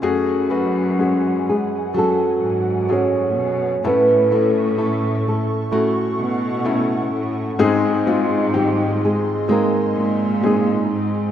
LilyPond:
<<
  \new Staff \with { instrumentName = "Analog synth pad" } { \time 4/4 \key a \major \tempo 4 = 63 << { gis''1 | <a' cis'''>1 | <dis' bis''>1 | } \\ { fis''1 | e''2 fis''2 | dis''1 | } >> }
  \new Staff \with { instrumentName = "Nylon-string guitar" } { \time 4/4 \key a \major r4 <fis fis'>8 <gis gis'>8 <fis a'>4 <cis' cis''>4 | <b b'>4. <a a'>2 r8 | r4 <g g'>8 <gis gis'>8 <ais ais'>4 <gis gis'>4 | }
  \new Staff \with { instrumentName = "Felt piano" } { \time 4/4 \key a \major <a cis' fis' gis'>8 <a cis' fis' b'>8 <gis cis' fis' gis'>4 <cis' fis' a'>4 <cis' fis' gis' a'>4 | <a cis' e' a'>8 <a cis' e' a'>8 <a cis' e' a'>4 <a cis' e' fis'>4 <a cis' e' a'>4 | <gis bis dis' gis'>8 <gis bis dis' eis'>8 <dis bis dis' g''>4 <gis bis dis' gis'>4 <gis bis dis' gis'>4 | }
  \new Staff \with { instrumentName = "Felt piano" } { \clef bass \time 4/4 \key a \major r1 | a,4. r2 r8 | gis,4. r2 r8 | }
  \new Staff \with { instrumentName = "Steel-string acoustic guitar" } { \clef bass \time 4/4 \key a \major fis,8 fis'4. fis2 | a,8 e'8 a'4 a2 | gis,8 dis'4. gis2 | }
  \new Staff \with { instrumentName = "Cello section" } { \clef bass \time 4/4 \key a \major fis,2~ fis,16 r16 gis,4 b,8 | a,2~ a,16 r16 b,4 a,8 | gis,2~ gis,16 r16 ais,4 gis,8 | }
>>